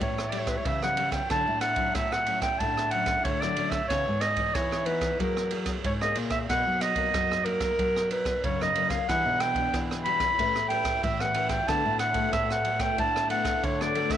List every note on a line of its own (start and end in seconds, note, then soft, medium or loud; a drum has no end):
0.00 0.62 A2 medium
0.00 0.56 A2 medium
0.00 0.19 G3 medium
0.00 0.20 C#4 medium
0.00 0.20 E4 medium
0.00 0.31 C#5 medium
0.00 kick medium
0.00 ride soft
0.18 cross-stick medium
0.30 0.76 G3 medium
0.30 0.76 C#4 soft
0.30 0.77 E4 medium
0.30 0.41 D5 medium
0.30 ride medium
0.39 0.50 C#5 medium
0.47 0.58 B4 medium
0.47 kick medium
0.47 cross-stick medium
0.47 ride soft
0.57 0.67 C#5 medium
0.65 1.21 C#3 medium
0.65 1.27 E3 medium
0.65 0.82 E5 medium
0.65 kick medium
0.65 ride medium
0.82 0.94 G3 medium
0.82 0.94 C#4 medium
0.82 0.94 E4 medium
0.82 1.12 F#5 medium
0.82 cross-stick medium
0.97 1.17 G3 medium
0.97 1.17 C#4 medium
0.97 1.17 E4 medium
0.97 ride medium
1.12 1.28 G5 medium
1.12 kick medium
1.12 cross-stick medium
1.12 ride soft
1.30 1.92 D3 medium
1.30 1.45 D3 loud
1.30 1.61 F#3 medium
1.30 1.61 C#4 medium
1.30 1.62 E4 medium
1.30 1.61 A5 loud
1.30 kick medium
1.30 cross-stick medium
1.30 ride soft
1.47 1.89 A2 medium
1.61 1.96 F#5 medium
1.61 cross-stick medium
1.61 ride medium
1.76 2.22 F#3 medium
1.76 2.22 C#4 medium
1.76 2.22 E4 medium
1.76 kick medium
1.76 ride soft
1.95 2.51 A2 medium
1.95 2.57 A2 soft
1.95 2.14 E5 loud
1.95 kick medium
1.95 cross-stick medium
1.95 ride medium
2.12 2.41 F#5 medium
2.12 cross-stick medium
2.26 2.70 F#3 medium
2.26 2.70 C#4 medium
2.26 2.70 E4 medium
2.26 ride soft
2.42 2.60 G5 medium
2.42 kick medium
2.42 cross-stick medium
2.42 ride soft
2.59 3.16 A2 medium
2.59 3.22 D3 medium
2.59 2.92 A5 medium
2.59 kick medium
2.59 ride soft
2.77 cross-stick medium
2.91 3.23 F#3 medium
2.91 3.23 C#4 soft
2.91 3.24 E4 medium
2.91 3.26 F#5 medium
2.91 ride soft
3.06 kick medium
3.06 cross-stick medium
3.06 ride soft
3.24 3.87 A2 medium
3.24 3.80 D3 medium
3.24 3.42 C#5 medium
3.24 kick medium
3.24 ride medium
3.41 3.53 F#3 medium
3.41 3.53 C#4 medium
3.41 3.53 E4 medium
3.41 3.72 D5 medium
3.41 cross-stick medium
3.56 3.76 F#3 medium
3.56 3.76 C#4 medium
3.56 3.77 E4 medium
3.56 ride medium
3.70 3.88 E5 medium
3.70 kick medium
3.70 cross-stick medium
3.70 ride soft
3.88 4.52 C#3 medium
3.88 4.04 C#3 loud
3.88 4.21 E3 medium
3.88 4.21 B3 medium
3.88 4.21 D#4 medium
3.88 4.23 C#5 loud
3.88 kick medium
3.88 cross-stick medium
3.88 ride soft
4.08 4.49 G#2 medium
4.21 4.56 D#5 medium
4.21 cross-stick medium
4.21 ride medium
4.36 4.81 E3 medium
4.36 4.81 B3 medium
4.36 4.81 D#4 medium
4.36 kick medium
4.36 ride medium
4.54 5.16 G#2 soft
4.54 5.10 E3 medium
4.54 4.87 C#5 loud
4.54 kick loud
4.54 cross-stick medium
4.54 ride medium
4.72 cross-stick medium
4.85 5.16 E3 medium
4.85 5.17 B3 medium
4.85 5.17 D#4 medium
4.85 5.19 B4 medium
4.85 ride soft
5.01 kick medium
5.01 cross-stick medium
5.01 ride soft
5.20 5.81 F#3 medium
5.20 5.75 F#3 medium
5.20 5.47 A#3 medium
5.20 5.47 E4 medium
5.20 5.48 G#4 medium
5.20 5.55 A#4 medium
5.20 kick medium
5.20 ride medium
5.37 cross-stick medium
5.51 5.82 A#3 soft
5.51 5.82 E4 soft
5.51 5.83 G#4 medium
5.51 ride medium
5.66 kick medium
5.66 cross-stick medium
5.66 ride soft
5.84 6.14 G#2 medium
5.84 6.46 C#3 medium
5.84 5.93 C#5 medium
5.84 kick medium
5.84 ride medium
6.01 6.45 A#3 medium
6.01 6.45 E4 medium
6.01 6.45 G#4 medium
6.01 6.16 D#5 medium
6.01 cross-stick medium
6.15 6.46 A#2 medium
6.15 ride medium
6.30 6.39 E5 medium
6.30 kick medium
6.30 cross-stick medium
6.30 ride soft
6.49 6.63 B2 loud
6.49 7.11 B2 medium
6.49 6.93 F#3 medium
6.49 6.94 A#3 medium
6.49 6.94 D#4 medium
6.49 6.83 F#5 loud
6.49 kick medium
6.49 cross-stick medium
6.49 ride medium
6.67 7.08 F#3 medium
6.81 7.47 D#5 loud
6.81 cross-stick medium
6.81 ride medium
6.96 7.40 F#3 medium
6.96 7.41 A#3 medium
6.96 7.41 D#4 medium
6.96 kick medium
6.96 ride soft
7.14 7.76 F#2 soft
7.14 7.70 F#3 medium
7.14 kick medium
7.14 cross-stick medium
7.14 ride soft
7.32 cross-stick medium
7.45 7.88 F#3 medium
7.45 7.88 A#3 medium
7.45 7.88 D#4 medium
7.45 8.11 A#4 loud
7.45 ride soft
7.60 kick medium
7.60 cross-stick medium
7.60 ride soft
7.79 8.41 B2 medium
7.79 8.34 F#3 loud
7.79 kick medium
7.79 ride soft
7.96 cross-stick medium
8.10 8.41 F#3 medium
8.10 8.42 D#4 medium
8.10 8.46 B4 medium
8.10 ride medium
8.25 kick medium
8.25 cross-stick medium
8.25 ride soft
8.44 9.05 F#2 medium
8.44 8.99 C#3 medium
8.44 8.61 C#5 medium
8.44 kick medium
8.44 ride soft
8.61 8.72 F#3 medium
8.61 8.72 A#3 medium
8.61 8.72 D#4 medium
8.61 8.89 D#5 medium
8.61 cross-stick medium
8.75 9.03 F#3 medium
8.75 9.03 A#3 medium
8.75 9.03 D#4 medium
8.75 ride medium
8.90 9.10 F5 loud
8.90 kick medium
8.90 cross-stick medium
8.90 ride soft
9.08 9.71 E3 medium
9.08 9.23 E3 loud
9.08 9.53 G3 medium
9.08 9.53 D4 medium
9.08 9.53 F#4 medium
9.08 9.42 F#5 loud
9.08 kick medium
9.08 cross-stick medium
9.08 ride soft
9.25 9.67 B2 medium
9.40 9.79 G5 loud
9.40 cross-stick medium
9.40 ride medium
9.55 10.00 G3 medium
9.55 10.00 D4 medium
9.55 10.00 F#4 medium
9.55 kick medium
9.55 ride soft
9.74 10.36 B2 soft
9.74 10.29 E3 medium
9.74 kick medium
9.74 cross-stick medium
9.74 ride medium
9.91 cross-stick medium
10.04 10.26 G3 medium
10.04 10.27 D4 medium
10.04 10.27 F#4 medium
10.04 10.66 B5 loud
10.04 ride medium
10.20 kick medium
10.20 cross-stick medium
10.20 ride soft
10.38 10.94 A2 loud
10.38 11.00 A3 medium
10.38 10.57 C#4 medium
10.38 10.58 G4 medium
10.38 10.58 B4 medium
10.38 kick medium
10.38 ride medium
10.56 cross-stick medium
10.69 11.14 C#4 medium
10.69 11.14 G4 soft
10.69 11.14 B4 medium
10.69 11.00 G5 loud
10.69 ride soft
10.85 kick medium
10.85 cross-stick medium
10.85 ride medium
11.03 11.59 A2 medium
11.03 11.65 E3 medium
11.03 11.22 E5 medium
11.03 kick medium
11.03 ride medium
11.20 11.31 C#4 medium
11.20 11.32 G4 medium
11.20 11.32 B4 medium
11.20 11.49 F#5 loud
11.20 cross-stick medium
11.34 11.55 C#4 medium
11.34 11.55 G4 medium
11.34 11.55 B4 medium
11.34 ride medium
11.49 11.70 G5 medium
11.49 kick medium
11.49 cross-stick medium
11.49 ride soft
11.68 12.30 D3 medium
11.68 11.82 D3 loud
11.68 11.99 A3 medium
11.68 11.99 B3 medium
11.68 11.99 F#4 medium
11.68 11.99 A5 loud
11.68 kick medium
11.68 cross-stick medium
11.68 ride soft
11.86 12.27 A2 medium
11.99 12.30 F#5 medium
11.99 cross-stick medium
11.99 ride soft
12.14 12.59 A3 medium
12.14 12.60 B3 medium
12.14 12.60 F#4 medium
12.14 kick medium
12.14 ride soft
12.33 12.95 A2 soft
12.33 12.89 A2 medium
12.33 12.49 E5 loud
12.33 kick medium
12.33 cross-stick medium
12.33 ride medium
12.50 12.82 F#5 medium
12.50 cross-stick medium
12.65 13.08 A3 medium
12.65 13.08 B3 medium
12.65 13.08 F#4 medium
12.65 ride soft
12.80 12.98 G5 medium
12.80 kick medium
12.80 cross-stick medium
12.80 ride soft
12.98 13.54 A2 medium
12.98 13.60 D3 medium
12.98 13.30 A5 loud
12.98 kick medium
12.98 ride soft
13.16 cross-stick medium
13.29 13.61 A3 medium
13.29 13.61 B3 medium
13.29 13.61 F#4 medium
13.29 13.66 F#5 medium
13.29 ride soft
13.45 kick medium
13.45 cross-stick medium
13.45 ride soft
13.63 14.17 A2 medium
13.63 14.17 D3 medium
13.63 13.84 C#5 medium
13.63 kick medium
13.63 ride soft
13.81 13.92 A3 medium
13.81 13.92 B3 medium
13.81 13.92 F#4 medium
13.81 14.13 D5 loud
13.81 cross-stick medium
13.95 14.17 A3 medium
13.95 14.17 B3 medium
13.95 14.17 F#4 medium
13.95 ride soft
14.10 14.17 E5 medium
14.10 kick medium
14.10 cross-stick medium
14.10 ride soft